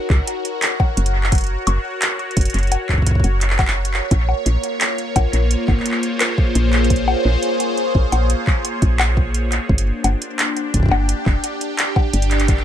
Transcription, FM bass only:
0, 0, Header, 1, 2, 480
1, 0, Start_track
1, 0, Tempo, 697674
1, 909, Time_signature, 4, 2, 24, 8
1, 8699, End_track
2, 0, Start_track
2, 0, Title_t, "FM bass"
2, 0, Program_c, 0, 39
2, 69, Note_on_c, 0, 37, 97
2, 145, Note_off_c, 0, 37, 0
2, 668, Note_on_c, 0, 30, 99
2, 1079, Note_off_c, 0, 30, 0
2, 1149, Note_on_c, 0, 30, 104
2, 1225, Note_off_c, 0, 30, 0
2, 1629, Note_on_c, 0, 30, 85
2, 1705, Note_off_c, 0, 30, 0
2, 1749, Note_on_c, 0, 30, 85
2, 1901, Note_off_c, 0, 30, 0
2, 2229, Note_on_c, 0, 30, 96
2, 2759, Note_off_c, 0, 30, 0
2, 2829, Note_on_c, 0, 34, 109
2, 2981, Note_off_c, 0, 34, 0
2, 3069, Note_on_c, 0, 34, 107
2, 3145, Note_off_c, 0, 34, 0
2, 3549, Note_on_c, 0, 34, 85
2, 3625, Note_off_c, 0, 34, 0
2, 3669, Note_on_c, 0, 34, 85
2, 3821, Note_off_c, 0, 34, 0
2, 3909, Note_on_c, 0, 32, 96
2, 3985, Note_off_c, 0, 32, 0
2, 4509, Note_on_c, 0, 34, 103
2, 4919, Note_off_c, 0, 34, 0
2, 4989, Note_on_c, 0, 34, 111
2, 5065, Note_off_c, 0, 34, 0
2, 5469, Note_on_c, 0, 34, 83
2, 5545, Note_off_c, 0, 34, 0
2, 5589, Note_on_c, 0, 34, 88
2, 5741, Note_off_c, 0, 34, 0
2, 6069, Note_on_c, 0, 34, 91
2, 6599, Note_off_c, 0, 34, 0
2, 6669, Note_on_c, 0, 31, 102
2, 6821, Note_off_c, 0, 31, 0
2, 6908, Note_on_c, 0, 31, 108
2, 6985, Note_off_c, 0, 31, 0
2, 7389, Note_on_c, 0, 31, 88
2, 7465, Note_off_c, 0, 31, 0
2, 7509, Note_on_c, 0, 31, 84
2, 7661, Note_off_c, 0, 31, 0
2, 7749, Note_on_c, 0, 29, 96
2, 7825, Note_off_c, 0, 29, 0
2, 8349, Note_on_c, 0, 31, 100
2, 8699, Note_off_c, 0, 31, 0
2, 8699, End_track
0, 0, End_of_file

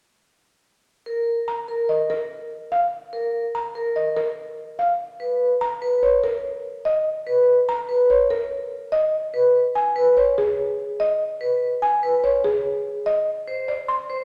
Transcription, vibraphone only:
0, 0, Header, 1, 2, 480
1, 0, Start_track
1, 0, Tempo, 413793
1, 992, Time_signature, 5, 2, 24, 8
1, 16518, End_track
2, 0, Start_track
2, 0, Title_t, "Vibraphone"
2, 0, Program_c, 0, 11
2, 1233, Note_on_c, 0, 70, 47
2, 1544, Note_off_c, 0, 70, 0
2, 1953, Note_on_c, 0, 70, 53
2, 2264, Note_off_c, 0, 70, 0
2, 3631, Note_on_c, 0, 70, 50
2, 3943, Note_off_c, 0, 70, 0
2, 4353, Note_on_c, 0, 70, 51
2, 4664, Note_off_c, 0, 70, 0
2, 6031, Note_on_c, 0, 71, 48
2, 6344, Note_off_c, 0, 71, 0
2, 6749, Note_on_c, 0, 71, 57
2, 7063, Note_off_c, 0, 71, 0
2, 8430, Note_on_c, 0, 71, 57
2, 8743, Note_off_c, 0, 71, 0
2, 9148, Note_on_c, 0, 71, 56
2, 9462, Note_off_c, 0, 71, 0
2, 10832, Note_on_c, 0, 71, 55
2, 11144, Note_off_c, 0, 71, 0
2, 11552, Note_on_c, 0, 71, 59
2, 11864, Note_off_c, 0, 71, 0
2, 13233, Note_on_c, 0, 71, 51
2, 13544, Note_off_c, 0, 71, 0
2, 13955, Note_on_c, 0, 71, 58
2, 14265, Note_off_c, 0, 71, 0
2, 15631, Note_on_c, 0, 72, 51
2, 15944, Note_off_c, 0, 72, 0
2, 16351, Note_on_c, 0, 72, 56
2, 16518, Note_off_c, 0, 72, 0
2, 16518, End_track
0, 0, End_of_file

